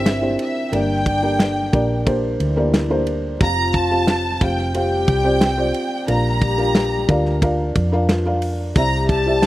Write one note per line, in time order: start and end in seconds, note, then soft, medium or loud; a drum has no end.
0.00 0.35 G1 medium
0.00 0.35 C3 medium
0.00 0.74 C3 medium
0.00 0.21 C4 medium
0.00 0.35 C4 loud
0.00 0.22 D4 medium
0.00 0.22 E4 medium
0.00 0.22 G4 medium
0.00 0.72 A#4 medium
0.00 0.23 C5 medium
0.00 0.37 E5 medium
0.06 snare loud
0.06 ride medium
0.21 0.65 C4 medium
0.21 0.65 D4 medium
0.21 0.66 E4 medium
0.21 0.66 G4 medium
0.21 0.66 C5 medium
0.39 0.71 E5 medium
0.39 ride medium
0.71 1.69 G1 loud
0.71 1.69 G2 medium
0.71 2.04 D3 medium
0.71 1.15 A#3 medium
0.71 1.16 D4 medium
0.71 2.04 D4 medium
0.71 1.16 G4 medium
0.71 1.16 A#4 medium
0.71 1.16 D5 medium
0.71 2.08 G5 loud
0.71 ride medium
1.06 kick medium
1.06 ride medium
1.22 1.66 A#3 medium
1.22 1.66 D4 medium
1.22 1.66 G4 medium
1.22 1.66 A#4 medium
1.22 1.66 D5 medium
1.39 snare loud
1.39 ride medium
1.72 2.36 A#1 medium
1.72 2.01 A#3 medium
1.72 2.02 D4 medium
1.72 2.02 G4 medium
1.72 2.02 A#4 medium
1.72 2.02 D5 loud
1.72 kick medium
1.72 ride medium
2.06 2.49 A#3 medium
2.06 2.49 D4 medium
2.06 2.50 G4 medium
2.06 2.50 A#4 medium
2.06 2.50 C5 loud
2.06 kick loud
2.06 ride medium
2.40 3.36 D2 medium
2.40 3.06 E3 medium
2.40 3.06 E4 medium
2.40 ride medium
2.56 2.85 A#3 medium
2.56 2.85 D4 medium
2.56 2.85 G4 medium
2.56 2.86 A#4 medium
2.56 2.86 D5 loud
2.74 snare loud
2.74 ride medium
2.90 3.33 A#3 medium
2.90 3.33 D4 medium
2.90 3.33 G4 medium
2.90 3.34 A#4 medium
2.90 3.34 C5 loud
3.07 ride medium
3.40 4.37 F1 loud
3.40 4.39 F3 medium
3.40 3.84 C4 medium
3.40 4.39 F4 medium
3.40 3.84 F4 medium
3.40 3.84 G4 medium
3.40 3.84 C5 medium
3.40 3.84 F5 medium
3.40 3.72 A#5 loud
3.40 kick loud
3.40 ride medium
3.74 4.41 A5 loud
3.74 kick medium
3.74 ride medium
3.91 4.34 C4 medium
3.91 4.34 F4 medium
3.91 4.34 G4 medium
3.91 4.34 C5 medium
3.91 4.35 F5 medium
4.07 snare loud
4.07 ride medium
4.41 5.04 F1 loud
4.41 4.70 C4 medium
4.41 4.70 F4 medium
4.41 4.70 G4 medium
4.41 4.70 C5 medium
4.41 4.70 F5 medium
4.41 4.75 G5 loud
4.41 kick medium
4.41 ride medium
4.58 snare soft
4.74 5.73 G3 medium
4.74 5.17 C4 medium
4.74 5.18 F4 medium
4.74 5.73 G4 loud
4.74 5.18 G4 medium
4.74 5.18 C5 medium
4.74 5.18 F5 medium
4.74 6.05 G5 loud
4.74 ride medium
5.08 5.71 C2 medium
5.08 kick medium
5.08 ride medium
5.24 5.53 C4 medium
5.24 5.53 F4 medium
5.24 5.53 G4 medium
5.24 5.54 C5 medium
5.24 5.54 D5 medium
5.41 snare loud
5.41 ride medium
5.57 6.01 C4 medium
5.57 6.01 F4 medium
5.57 6.01 G4 medium
5.57 6.01 C5 medium
5.57 6.01 D5 loud
5.74 ride medium
6.07 7.05 A#1 loud
6.07 7.05 A#2 medium
6.07 7.72 G3 medium
6.07 6.51 D4 medium
6.07 6.51 F4 medium
6.07 7.72 G4 loud
6.07 6.51 A#4 medium
6.07 6.51 D5 medium
6.07 6.52 F5 medium
6.07 7.39 A#5 loud
6.07 ride medium
6.42 kick medium
6.42 ride medium
6.57 7.01 D4 medium
6.57 7.01 F4 medium
6.57 7.01 A#4 medium
6.57 7.01 D5 medium
6.57 7.02 F5 medium
6.75 snare loud
6.75 ride medium
7.08 7.72 D2 medium
7.08 7.37 D4 medium
7.08 7.37 F4 medium
7.08 7.37 A#4 medium
7.08 7.38 D5 medium
7.08 7.38 F5 loud
7.08 kick medium
7.08 ride medium
7.25 snare soft
7.42 7.85 D4 medium
7.42 7.85 F4 medium
7.42 7.86 A#4 medium
7.42 7.86 D5 medium
7.42 7.86 F5 loud
7.42 kick medium
7.42 ride medium
7.75 8.72 F2 medium
7.75 kick medium
7.75 ride medium
7.92 8.21 D4 medium
7.92 8.21 F4 medium
7.92 8.21 A#4 medium
7.92 8.21 D5 medium
7.92 8.22 F5 loud
8.09 8.42 F3 medium
8.09 8.42 F4 medium
8.09 snare loud
8.09 ride medium
8.25 8.69 D4 medium
8.25 8.69 F4 medium
8.25 8.69 A#4 medium
8.25 8.69 D5 medium
8.25 8.69 F5 medium
8.42 open hi-hat medium
8.42 ride medium
8.75 9.46 C2 loud
8.75 9.46 C3 medium
8.75 9.46 G3 medium
8.75 9.19 E4 medium
8.75 9.46 G4 loud
8.75 9.19 G4 medium
8.75 9.19 C5 medium
8.75 9.20 D5 medium
8.75 9.20 E5 medium
8.75 9.08 A#5 loud
8.75 kick loud
8.75 hi-hat pedal medium
8.75 ride medium
9.09 9.46 A5 loud
9.09 kick medium
9.09 ride medium
9.26 9.46 E4 medium
9.26 9.46 G4 medium
9.26 9.46 C5 medium
9.26 9.46 D5 medium
9.26 9.46 E5 medium
9.42 snare loud
9.42 ride medium